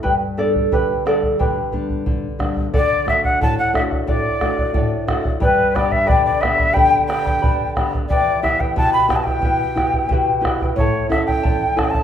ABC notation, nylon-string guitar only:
X:1
M:2/4
L:1/8
Q:1/4=90
K:G
V:1 name="Nylon-string guitar"
G,, [G,B,D] D, [G,B,D] | D, [G,B,D] D, [G,B,D] | D, [A,DF] A,, [A,DF] | A,, [A,DF] A,, [A,DF] |
G,, [B,DG] D, [B,DG] | D, [B,DG] D, [B,DG] | E,, [B,EG] B,, [B,EG] | B,, [B,EG] B,, [B,EG] |
A,, [^CEA] E,, [CEA] |]